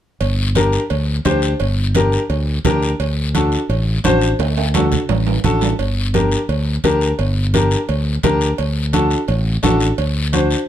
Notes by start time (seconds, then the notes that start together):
0.21 G1, cowbell, high conga, long guiro
0.55 D4 G4 A#4, cowbell, high conga, short guiro
0.73 short guiro
0.90 D2, cowbell, high conga, long guiro
1.25 D2 D4 G4 C5, cowbell, high conga, low timbale, short guiro
1.42 short guiro
1.60 G1, cowbell, high conga, long guiro
1.95 D4 G4 A#4, cowbell, high conga, short guiro
2.12 short guiro
2.30 D2, cowbell, high conga, long guiro
2.64 D2 D4 G4 A#4, cowbell, high conga, low conga, low timbale, short guiro
2.83 short guiro
3.00 D2, cowbell, high conga, long guiro
3.34 D4 F#4 A4, cowbell, high conga, short guiro
3.52 short guiro
3.69 A1, cowbell, high conga, long guiro
4.04 A1 D4 F#4 C5, cowbell, high conga, low timbale, short guiro
4.21 short guiro
4.39 D2, cowbell, high conga, high timbale, long guiro
4.57 high timbale
4.74 D4 F#4 A4, cowbell, high conga, low timbale, short guiro
4.92 low conga, short guiro
5.09 A1, cowbell, high conga, low timbale, long guiro
5.27 low timbale
5.44 A1 D4 F#4 A4, cowbell, high conga, low conga, short guiro
5.61 low timbale, short guiro
5.79 G1, cowbell, high conga, long guiro
6.14 D4 G4 A#4, cowbell, high conga, short guiro
6.32 short guiro
6.49 D2, cowbell, high conga, long guiro
6.84 D2 D4 G4 A#4, cowbell, high conga, short guiro
7.01 short guiro
7.19 G1, cowbell, high conga, long guiro
7.54 D4 G4 A#4, cowbell, high conga, short guiro
7.71 short guiro
7.89 D2, cowbell, high conga, long guiro
8.23 D2 D4 G4 A#4, cowbell, high conga, low conga, short guiro
8.41 short guiro
8.58 D2, cowbell, high conga, long guiro
8.93 D4 F#4 A4, cowbell, high conga, short guiro
9.11 short guiro
9.28 A1, cowbell, high conga, long guiro
9.63 A1 D4 F#4 A4, cowbell, high conga, low timbale, short guiro
9.80 short guiro
9.98 D2, cowbell, high conga, long guiro
10.33 D4 F#4 C5, cowbell, high conga, short guiro
10.51 short guiro